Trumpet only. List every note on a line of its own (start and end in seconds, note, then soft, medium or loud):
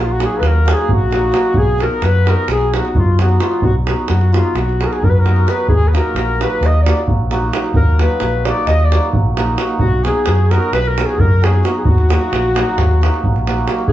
0.04 0.13 F4 medium
0.11 0.26 F#4 medium
0.24 0.39 G#4 medium
0.37 0.47 B4 medium
0.46 0.73 A#4 medium
0.72 0.91 G#4 medium
0.93 1.59 F#4 medium
1.58 1.86 G#4 medium
1.84 2.08 A#4 medium
2.06 2.31 B4 medium
2.29 2.50 A#4 medium
2.52 2.74 G#4 medium
2.76 3.00 F#4 medium
2.98 3.20 F4 medium
3.21 3.43 F#4 medium
3.41 3.62 F4 medium
3.64 3.75 F#4 medium
4.09 4.34 F#4 medium
4.33 4.59 F4 medium
4.58 4.84 F#4 medium
4.83 4.89 G#4 medium
4.87 4.95 A#4 medium
4.94 5.06 G#4 medium
5.04 5.11 A#4 medium
5.10 5.21 B4 medium
5.19 5.54 A#4 medium
5.52 5.71 B4 medium
5.74 5.90 G#4 medium
5.88 5.99 B4 medium
5.97 6.46 A#4 medium
6.44 6.69 B4 medium
6.67 6.81 D#5 medium
6.84 7.03 D5 medium
7.78 8.03 A#4 medium
8.01 8.47 B4 medium
8.46 8.69 D5 medium
8.68 8.86 D#5 medium
8.85 9.07 D5 medium
9.80 10.05 F#4 medium
10.04 10.52 G#4 medium
10.51 10.75 A#4 medium
10.73 10.89 B4 loud
10.88 11.06 A#4 medium
11.04 11.20 G#4 medium
11.18 11.45 A#4 medium
11.43 11.67 G#4 medium
11.66 11.78 F#4 medium
11.78 11.86 G#4 soft
11.84 13.48 F#4 medium